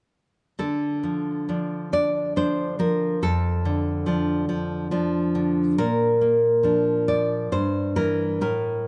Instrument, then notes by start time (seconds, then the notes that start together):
nylon-string guitar
0.59 D3 A4
1.03 F3
1.49 F3 D4
1.93 D4 D5
2.36 F3 D4 C5
2.79 F3 A#4
3.23 F2 A4
3.65 D3
4.06 F3 D4
4.49 F3
4.91 F3 D4
5.35 D3
5.78 A#2 A#4
6.21 A#3
6.63 F3 D4
7.08 F3 D5
7.52 G2 C5
7.96 E3 E4 A#4
8.41 A2 A#4